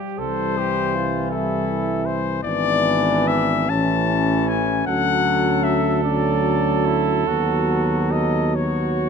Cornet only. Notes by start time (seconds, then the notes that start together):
0.18 C5
1.31 A4
2.06 C5
2.43 D5
3.27 E5
3.70 A5
4.48 G#5
4.87 F#5
5.64 E5
6.04 D5
6.86 E4
7.27 F#4
8.12 D#5
8.55 C#5